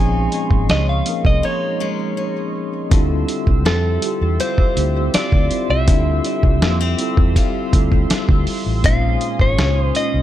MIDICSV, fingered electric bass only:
0, 0, Header, 1, 3, 480
1, 0, Start_track
1, 0, Key_signature, -1, "minor"
1, 0, Tempo, 740741
1, 1890, Time_signature, 4, 2, 24, 8
1, 6625, End_track
2, 0, Start_track
2, 0, Title_t, "Fingered electric bass"
2, 0, Program_c, 0, 33
2, 0, Note_on_c, 0, 34, 103
2, 170, Note_off_c, 0, 34, 0
2, 330, Note_on_c, 0, 32, 97
2, 430, Note_off_c, 0, 32, 0
2, 450, Note_on_c, 0, 37, 100
2, 650, Note_off_c, 0, 37, 0
2, 809, Note_on_c, 0, 36, 98
2, 910, Note_off_c, 0, 36, 0
2, 1890, Note_on_c, 0, 38, 105
2, 2090, Note_off_c, 0, 38, 0
2, 2250, Note_on_c, 0, 36, 101
2, 2370, Note_off_c, 0, 36, 0
2, 2370, Note_on_c, 0, 41, 97
2, 2570, Note_off_c, 0, 41, 0
2, 2730, Note_on_c, 0, 40, 87
2, 2830, Note_off_c, 0, 40, 0
2, 3090, Note_on_c, 0, 38, 96
2, 3290, Note_off_c, 0, 38, 0
2, 3450, Note_on_c, 0, 38, 93
2, 3550, Note_off_c, 0, 38, 0
2, 3691, Note_on_c, 0, 36, 96
2, 3810, Note_off_c, 0, 36, 0
2, 3810, Note_on_c, 0, 38, 105
2, 4010, Note_off_c, 0, 38, 0
2, 4169, Note_on_c, 0, 36, 104
2, 4294, Note_off_c, 0, 36, 0
2, 4294, Note_on_c, 0, 41, 99
2, 4492, Note_off_c, 0, 41, 0
2, 4650, Note_on_c, 0, 40, 89
2, 4750, Note_off_c, 0, 40, 0
2, 5011, Note_on_c, 0, 38, 89
2, 5211, Note_off_c, 0, 38, 0
2, 5371, Note_on_c, 0, 38, 88
2, 5471, Note_off_c, 0, 38, 0
2, 5614, Note_on_c, 0, 33, 103
2, 5712, Note_off_c, 0, 33, 0
2, 5730, Note_on_c, 0, 34, 106
2, 5930, Note_off_c, 0, 34, 0
2, 6090, Note_on_c, 0, 32, 94
2, 6190, Note_off_c, 0, 32, 0
2, 6213, Note_on_c, 0, 37, 99
2, 6412, Note_off_c, 0, 37, 0
2, 6571, Note_on_c, 0, 36, 82
2, 6625, Note_off_c, 0, 36, 0
2, 6625, End_track
3, 0, Start_track
3, 0, Title_t, "Muted fingered electric bass strokes"
3, 3333, Note_on_c, 9, 29, 46
3, 3397, Note_off_c, 9, 29, 0
3, 5254, Note_on_c, 9, 29, 48
3, 5319, Note_off_c, 9, 29, 0
3, 6625, End_track
0, 0, End_of_file